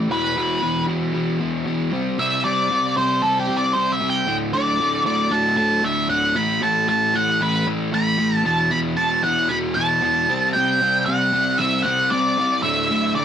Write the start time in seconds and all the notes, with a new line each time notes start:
0.08 E2 B2 E3 B4
0.35 E2 B2 E3
0.62 E2 B2 E3
0.87 E2 B2 E3
1.14 E2 B2 E3
1.39 E2 B2 E3
1.66 E2 B2 E3
1.91 C3 G3 C4
2.18 C3 G3 C4 E5
2.44 C3 G3 C4 D5
2.69 C3 G3 C4
2.96 C3 G3 C4 C5
3.22 C3 G3 C4 A4
3.40 G4
3.48 C3 G3 C4
3.57 D5
3.73 C3 G3 C4 C5
3.92 E5
4.00 C3 G3 C4
4.09 G5
4.27 D2 A2 D3
4.53 D2 A2 D3 D5
4.79 D2 A2 D3
5.05 D2 A2 D3 D5
5.30 D2 A2 D3 A5
5.57 D2 A2 D3 A5
5.82 D2 A2 D3 E5
6.08 D2 A2 D3 F#5
6.35 A2 E3 A3 B5
6.61 A2 E3 A3 A5
6.87 A2 E3 A3 A5
7.14 A2 E3 A3 F#5
7.40 A2 E3 A3 B4
7.66 A2 E3 A3
7.92 A2 E3 A3 B5
8.18 A2 E3 A3
8.36 A5
8.44 E2 B2 E3 A5
8.71 E2 B2 E3 B5
8.96 E2 B2 E3 A5
9.23 E2 B2 E3 F#5
9.49 E2 B2 E3 B5
9.75 E2 B2 E3 A5
10.01 E2 B2 E3
10.28 C3 G3 C4
10.53 C3 G3 C4 G5
10.81 C3 G3 C4
11.06 C3 G3 C4 F#5
11.32 C3 G3 C4
11.58 C3 G3 C4 E5
11.83 C3 G3 C4 F#5
12.10 C3 G3 C4 D5
12.37 C3 G3 C4
12.63 D2 A2 D3 E5
12.90 D2 A2 D3
13.15 D2 A2 D3 D5